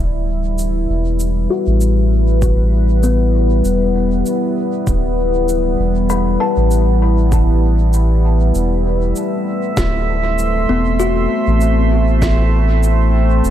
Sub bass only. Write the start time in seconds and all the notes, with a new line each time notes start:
Already playing: D1
0.89 E1
1.67 A1
3.65 E1
4.87 D1
5.79 E1
6.57 A1
8.55 E1
9.77 D1
10.69 E1
11.47 A1
13.45 E1